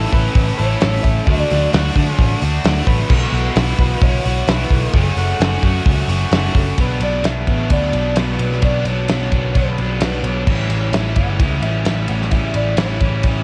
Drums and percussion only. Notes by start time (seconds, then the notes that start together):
0.12 kick, open hi-hat
0.35 kick, open hi-hat
0.59 open hi-hat
0.81 snare, open hi-hat
1.04 kick, open hi-hat
1.27 kick, open hi-hat
1.50 snare, open hi-hat
1.73 snare, open hi-hat
1.96 kick, snare, open hi-hat
2.19 kick, open hi-hat
2.42 open hi-hat
2.64 snare, open hi-hat
2.87 kick, open hi-hat
3.10 kick, crash
3.34 open hi-hat
3.56 snare, open hi-hat
3.79 kick, open hi-hat
4.02 kick, open hi-hat
4.25 open hi-hat
4.47 snare, open hi-hat
4.70 kick, open hi-hat
4.94 kick, open hi-hat
5.17 open hi-hat
5.40 snare, open hi-hat
5.62 kick, open hi-hat
5.85 kick, open hi-hat
6.09 open hi-hat
6.32 snare, open hi-hat
6.55 kick, open hi-hat
6.78 kick, ride
7.01 ride
7.24 snare, ride
7.47 kick, ride
7.70 kick, ride
7.93 ride
8.16 snare, ride
8.39 ride
8.52 snare
8.62 kick, ride
8.85 ride
9.08 snare, ride
9.21 snare
9.32 kick, ride
9.55 kick, ride
9.78 ride
10.01 snare, ride
10.24 ride
10.47 kick, crash
10.70 ride
10.93 snare, ride
11.06 snare
11.16 kick, ride
11.40 kick, ride
11.62 ride
11.85 snare, ride
12.08 ride
12.21 snare
12.31 kick, ride
12.54 ride
12.77 snare, ride
13.00 kick, ride
13.23 kick, ride